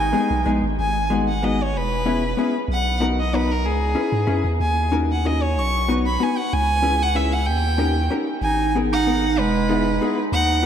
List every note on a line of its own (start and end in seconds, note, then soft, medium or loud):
0.00 0.13 G#1 loud
0.00 0.45 D#4 medium
0.00 0.46 G#5 medium
0.13 0.30 G#3 medium
0.13 0.30 B3 medium
0.13 0.30 D#4 medium
0.13 0.31 G#4 medium
0.31 0.45 B1 medium
0.46 0.62 A#1 medium
0.46 0.63 G#3 medium
0.46 0.63 B3 soft
0.46 0.64 D#4 medium
0.46 0.64 G#4 medium
0.63 0.77 G#1 medium
0.79 1.75 G#1 medium
0.79 1.09 G#5 medium
1.10 1.27 G#3 medium
1.10 1.28 B3 soft
1.10 1.28 D#4 medium
1.10 1.28 F#4 medium
1.28 1.45 F#5 medium
1.43 1.59 G#3 medium
1.43 1.60 B3 medium
1.43 1.60 D#4 medium
1.43 1.60 F#4 medium
1.43 1.64 D#5 medium
1.63 1.78 C#5 medium
1.74 2.35 E1 loud
1.74 2.55 B4 medium
2.06 2.22 B3 medium
2.06 2.22 C#4 soft
2.06 2.23 E4 medium
2.06 2.22 G#4 medium
2.37 2.54 B3 medium
2.37 2.54 C#4 medium
2.37 2.54 E4 soft
2.37 2.54 G#4 medium
2.68 3.65 B1 loud
2.72 3.00 F#5 medium
3.00 3.17 B3 medium
3.00 3.17 D#4 medium
3.00 3.18 F#4 medium
3.00 3.17 A#4 medium
3.20 3.37 D#5 medium
3.33 3.49 B3 medium
3.33 3.50 D#4 medium
3.33 3.50 F#4 medium
3.33 3.50 A#4 medium
3.33 3.53 B4 medium
3.52 3.67 A#4 medium
3.63 3.95 C#2 loud
3.63 4.46 G#4 medium
3.95 4.12 C#4 medium
3.95 4.12 E4 medium
3.95 4.13 G#4 soft
3.95 4.12 B4 medium
4.12 4.26 G#2 medium
4.27 4.43 F#2 medium
4.27 4.45 C#4 medium
4.27 4.45 E4 medium
4.27 4.45 G#4 medium
4.27 4.45 B4 soft
4.45 4.59 E2 medium
4.60 5.58 D#2 loud
4.60 4.91 G#5 medium
4.92 5.09 C#4 medium
4.92 5.09 D#4 medium
4.92 5.09 F#4 medium
4.92 5.10 A#4 medium
5.12 5.28 F#5 medium
5.25 5.42 C#4 medium
5.25 5.42 D#4 soft
5.25 5.42 F#4 soft
5.25 5.42 A#4 medium
5.25 5.44 D#5 medium
5.42 5.60 C#5 medium
5.56 6.18 B1 loud
5.56 5.89 C#6 loud
5.88 6.05 B3 medium
5.88 6.05 D#4 medium
5.88 6.05 F#4 medium
5.88 6.05 B4 medium
6.06 6.24 B5 medium
6.20 6.36 B3 medium
6.20 6.37 D#4 soft
6.20 6.37 F#4 medium
6.20 6.37 B4 medium
6.20 6.39 G#5 medium
6.38 6.55 F#5 medium
6.53 7.48 C#2 loud
6.53 7.04 G#5 loud
6.82 6.99 C#4 medium
6.82 7.00 E4 medium
6.82 7.00 G#4 medium
6.82 7.00 B4 medium
7.03 7.18 F#5 medium
7.15 7.32 C#4 medium
7.15 7.32 E4 medium
7.15 7.32 G#4 soft
7.15 7.32 B4 medium
7.15 7.34 E5 medium
7.33 7.48 F#5 medium
7.47 8.09 D#2 loud
7.47 8.10 G5 medium
7.78 7.95 C#4 medium
7.78 7.95 D#4 medium
7.78 7.95 G4 medium
7.78 7.95 A#4 medium
8.10 8.27 C#4 medium
8.10 8.28 D#4 medium
8.10 8.28 G4 medium
8.10 8.28 A#4 medium
8.41 9.39 G#1 medium
8.41 8.73 D#4 medium
8.41 8.73 G#5 medium
8.75 8.92 B3 medium
8.75 8.92 D#4 medium
8.75 8.92 G#4 medium
8.75 8.92 A#4 medium
8.92 9.41 D#4 medium
8.92 9.40 F#5 medium
9.07 9.24 B3 medium
9.07 9.24 D#4 medium
9.07 9.24 G#4 soft
9.07 9.24 A#4 medium
9.38 10.00 E1 loud
9.38 10.18 G#3 medium
9.38 10.18 B4 medium
9.69 9.86 B3 medium
9.69 9.86 D#4 medium
9.69 9.87 E4 medium
9.69 9.87 G#4 medium
10.01 10.18 B3 medium
10.01 10.18 D#4 medium
10.01 10.19 E4 medium
10.01 10.19 G#4 medium
10.32 10.66 D#2 loud
10.32 10.62 D#4 medium
10.32 10.62 F#5 loud
10.63 10.66 B3 medium